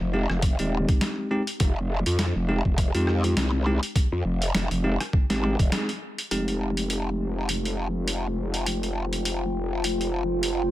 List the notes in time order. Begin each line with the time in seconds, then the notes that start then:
0.01 F1
0.13 G#3 C4 D#4 G4
0.30 F1, cross-stick
0.42 kick, closed hi-hat
0.59 D#1 G#3 C4 D#4 G4, closed hi-hat
0.89 kick, closed hi-hat
1.01 snare, closed hi-hat
1.31 G#3 C4 D#4 G4
1.47 closed hi-hat
1.60 F1, kick, closed hi-hat
2.06 F2, closed hi-hat
2.19 snare, closed hi-hat
2.36 F1
2.49 G#3 C4 D#4 G4
2.65 F1, kick
2.78 kick, closed hi-hat
2.95 F2 G#3 C4 D#4 G4, closed hi-hat
3.07 cross-stick
3.24 closed hi-hat
3.37 C2, snare, closed hi-hat
3.66 G#3 C4 D#4 G4
3.83 closed hi-hat
3.96 kick, closed hi-hat
4.12 F2
4.25 F1
4.42 closed hi-hat
4.55 F1, snare, closed hi-hat
4.71 F1, closed hi-hat
4.84 G#3 C4 D#4 G4
5.00 cross-stick, closed hi-hat
5.13 kick
5.30 G#1 G#3 C4 D#4 G4, snare, closed hi-hat
5.43 G#3 C4 D#4 G4
5.59 D#1, kick, closed hi-hat
5.72 G#3 C4 D#4 G#4, snare, closed hi-hat
5.89 closed hi-hat
6.18 closed hi-hat
6.31 F1 G#3 C4 D#4 F4 G4, closed hi-hat
6.48 closed hi-hat
6.63 C5
6.77 closed hi-hat
6.90 closed hi-hat
7.49 closed hi-hat
7.65 closed hi-hat
7.97 G5
8.08 closed hi-hat
8.54 closed hi-hat
8.66 closed hi-hat
8.83 closed hi-hat
9.13 closed hi-hat
9.25 closed hi-hat
9.84 closed hi-hat
10.01 closed hi-hat
10.43 closed hi-hat